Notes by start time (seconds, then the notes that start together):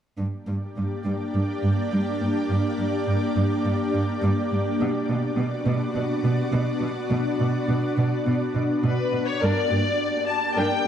0.18 G2 A#3 D4 G4 D5
0.47 G2
0.77 G2
1.04 G2
1.35 G2
1.63 G2
1.92 G2
2.21 G2
2.50 G2
2.78 G2
3.07 G2
3.36 G2
3.65 G2
3.94 G2
4.22 G2
4.52 G2
4.80 B2 B3 D4 F#4 D5
5.09 B2
5.38 B2
5.66 B2
5.95 B2
6.24 B2
6.52 B2
6.82 B2
7.10 B2
7.40 B2
7.68 B2
7.97 B2
8.26 B2
8.55 B2
8.84 B2 B4
9.13 B2
9.27 C#5
9.41 G2 A#3 D4 G4 A#4 D5
9.71 G2 A#3 G4
10.29 A5
10.57 G2 D4 A#4 G5